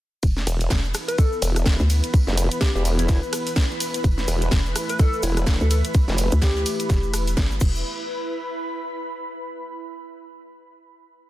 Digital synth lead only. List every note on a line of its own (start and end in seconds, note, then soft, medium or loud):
1.08 1.16 B4 medium
1.18 1.56 A4 medium
2.61 2.70 G4 medium
2.75 2.81 G4 medium
2.99 3.05 E4 medium
3.09 3.18 E4 medium
4.90 4.97 B4 medium
4.99 5.23 A4 medium
5.23 5.40 E4 loud
5.61 5.67 A4 medium
5.71 5.80 A4 medium
6.42 7.10 G4 loud